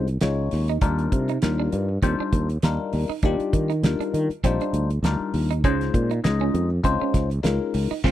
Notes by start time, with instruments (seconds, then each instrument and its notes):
Already playing: fretless electric bass C2
0.08 closed hi-hat
0.21 fretless electric bass C#2, tine electric piano G#3 C#4 D#4 F4 C#5, snare, closed hi-hat
0.51 fretless electric bass D#2, snare, open hi-hat
0.68 clean electric guitar D#4, closed hi-hat
0.81 fretless electric bass D#2, tine electric piano G3 D4 D#4 F4 A#4, clean electric guitar D4, kick, closed hi-hat
0.99 closed hi-hat
1.12 fretless electric bass C3, kick, closed hi-hat
1.29 clean electric guitar D#4, closed hi-hat
1.42 fretless electric bass D#2, tine electric piano G3 D4 D#4 F4 A#4, snare, closed hi-hat
1.60 clean electric guitar D4
1.72 fretless electric bass G2, closed hi-hat
2.02 fretless electric bass D#2, tine electric piano G3 D4 D#4 F4 C5, clean electric guitar C4, kick, closed hi-hat
2.20 clean electric guitar D4, muted fretless electric bass stroke
2.33 fretless electric bass D#2, kick, closed hi-hat
2.50 closed hi-hat
2.62 fretless electric bass D#2, tine electric piano G3 D4 D#4 F4 A#4, snare, closed hi-hat
2.93 fretless electric bass D#2, open hi-hat
3.09 clean electric guitar D#4, muted fretless electric bass stroke
3.23 fretless electric bass D#2, tine electric piano G3 D4 D#4 F4 G4, clean electric guitar D4, kick, closed hi-hat
3.40 muted fretless electric bass stroke, closed hi-hat
3.53 fretless electric bass D#3, kick, closed hi-hat
3.70 clean electric guitar D#4, closed hi-hat
3.83 fretless electric bass D#2, tine electric piano G3 D4 D#4 F4 A#4, snare, closed hi-hat
4.00 clean electric guitar D4, muted fretless electric bass stroke, closed hi-hat
4.14 fretless electric bass D#3, closed hi-hat
4.30 muted fretless electric bass stroke, closed hi-hat
4.44 fretless electric bass A#1, tine electric piano G3 D4 D#4 F4 C5, clean electric guitar C4, kick, closed hi-hat
4.61 clean electric guitar D4, closed hi-hat
4.73 fretless electric bass D2, closed hi-hat
4.90 closed hi-hat
5.03 fretless electric bass D2, tine electric piano G3 D4 D#4 F4 A#4, snare, closed hi-hat
5.34 fretless electric bass D#2, open hi-hat
5.51 clean electric guitar D#4, closed hi-hat
5.64 fretless electric bass C#2, tine electric piano G#3 C#4 D#4 F4 C5, clean electric guitar C#4, kick, closed hi-hat
5.81 snare, closed hi-hat
5.94 fretless electric bass A#2, kick, closed hi-hat
6.11 clean electric guitar D#4, closed hi-hat
6.24 fretless electric bass C#2, tine electric piano G#3 C#4 D#4 F4 D#5, snare, closed hi-hat
6.41 clean electric guitar C#4
6.54 fretless electric bass F2, closed hi-hat
6.83 fretless electric bass C#2, tine electric piano G#3 C#4 D#4 F4 C5, clean electric guitar C4, kick, closed hi-hat
7.02 clean electric guitar C#4, muted fretless electric bass stroke
7.14 fretless electric bass C#2, kick, snare, closed hi-hat
7.31 closed hi-hat
7.43 fretless electric bass C#2, tine electric piano G#3 C#4 D#4 F4 A#4, snare, closed hi-hat
7.74 fretless electric bass C#2, open hi-hat
7.91 clean electric guitar D#4, muted fretless electric bass stroke
8.04 fretless electric bass C#2, tine electric piano C4 C#4 F4, clean electric guitar C4 C#4 F4, kick, snare